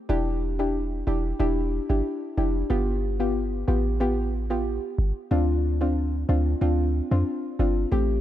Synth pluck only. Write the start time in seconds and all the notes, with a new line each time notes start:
0.09 D4 E4 G4
0.59 D4 E4 G4
1.07 D4 E4 G4
1.39 D4 E4 G4
1.89 D4 E4 G4
2.37 D4 E4 G4
2.70 B3 F4 G4
3.20 B3 F4 G4
3.68 B3 F4 G4
4.00 B3 F4 G4
4.50 B3 F4 G4
5.31 C4 D4 F4
5.81 C4 D4 F4
6.29 C4 D4 F4
6.61 C4 D4 F4
7.11 C4 D4 F4
7.59 C4 D4 F4
7.92 A3 C4 G4